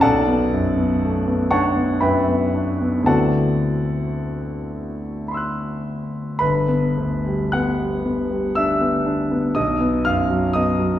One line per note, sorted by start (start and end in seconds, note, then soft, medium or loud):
0.01 3.02 B1 soft
0.01 1.46 A4 medium
0.01 1.46 D5 medium
0.01 1.46 F#5 medium
0.01 1.49 A5 medium
0.28 0.67 B3 soft
0.53 0.92 F#2 soft
0.78 1.16 B3 soft
1.02 1.26 A3 soft
1.27 1.66 B3 soft
1.51 1.91 D4 soft
1.51 1.97 C#5 soft
1.51 1.97 F#5 medium
1.51 1.97 A5 medium
1.51 2.00 C#6 medium
1.76 2.16 B3 soft
2.01 2.42 F#2 soft
2.01 3.03 B4 soft
2.01 3.02 E5 soft
2.01 3.03 G5 soft
2.01 3.06 B5 medium
2.29 2.69 B3 soft
2.55 2.96 D4 soft
2.82 3.02 B3 soft
3.02 6.35 D2 soft
3.02 6.36 B3 soft
3.02 6.36 C4 soft
3.02 6.37 E4 soft
3.02 5.27 A5 medium
3.07 6.37 F#4 soft
3.07 5.24 A4 soft
3.07 5.24 D5 soft
3.07 5.24 F#5 soft
5.28 6.37 B5 soft
5.28 6.39 C6 soft
5.34 6.40 E6 soft
5.34 6.42 F#6 soft
6.39 9.52 G1 soft
6.39 7.50 B4 medium
6.39 7.53 B5 medium
6.68 7.15 B3 soft
6.97 7.43 D2 soft
7.26 7.70 G3 soft
7.52 7.96 B3 soft
7.52 8.53 F#5 soft
7.52 8.56 F#6 medium
7.80 8.22 G3 soft
8.05 8.46 B3 soft
8.30 8.71 G3 soft
8.55 8.97 D4 soft
8.55 9.52 E5 medium
8.55 9.55 E6 medium
8.81 9.21 B3 soft
9.06 9.46 D4 soft
9.31 9.56 B3 soft
9.55 10.99 B1 soft
9.55 10.02 D#5 soft
9.55 10.05 D#6 medium
9.80 10.20 B3 soft
10.05 10.46 F#2 soft
10.05 10.52 F5 soft
10.05 10.55 F6 medium
10.30 10.70 F#3 soft
10.53 10.94 B3 soft
10.53 10.99 D#5 soft
10.53 10.99 D#6 medium
10.79 10.99 F#3 soft